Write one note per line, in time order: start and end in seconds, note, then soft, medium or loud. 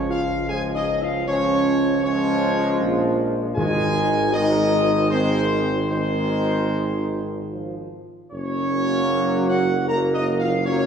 0.00 2.77 C#2 medium
0.00 0.46 F3 loud
0.00 0.45 G#3 loud
0.10 0.46 F4 loud
0.10 0.46 F5 loud
0.49 1.24 F3 medium
0.49 1.23 G#3 medium
0.49 0.61 G#4 loud
0.49 0.61 G#5 loud
0.75 0.99 D#4 loud
0.75 0.99 D#5 loud
1.01 1.14 F4 medium
1.01 1.27 F5 loud
1.26 2.00 F3 loud
1.26 1.99 G#3 medium
1.26 2.00 C#4 loud
1.26 2.00 C#5 loud
2.02 3.52 F3 loud
2.02 3.52 G#3 loud
2.02 3.15 C#4 loud
2.02 3.15 C#5 loud
2.81 3.53 A#1 loud
3.57 7.95 G#1 loud
3.57 4.68 G#2 loud
3.57 4.30 D#3 loud
3.57 4.29 G#3 loud
3.57 4.29 G#4 loud
3.57 4.29 G#5 loud
4.31 5.06 D#3 loud
4.31 5.06 G#3 loud
4.31 5.08 D#4 loud
4.31 5.07 D#5 loud
5.10 5.72 D#3 loud
5.10 5.72 G#3 loud
5.10 5.87 C4 loud
5.10 5.86 C5 loud
5.89 7.47 D#3 loud
5.89 7.94 G#3 loud
5.89 7.48 C4 loud
5.89 7.47 C5 loud
7.51 7.99 F3 medium
8.32 10.86 F#1 loud
8.32 9.85 F#3 loud
8.32 9.85 A#3 loud
8.32 9.46 C#4 loud
8.32 9.46 C#5 loud
9.49 9.86 F#4 loud
9.49 9.86 F#5 loud
9.88 10.63 F#3 loud
9.88 10.63 A#3 medium
9.88 10.15 A#4 loud
9.88 10.00 A#5 loud
10.13 10.39 D#4 loud
10.13 10.25 D#5 loud
10.39 10.65 F4 medium
10.39 10.64 F5 loud
10.66 10.86 F#3 loud
10.66 10.86 A#3 loud
10.66 10.86 C#4 loud
10.66 10.86 C#5 loud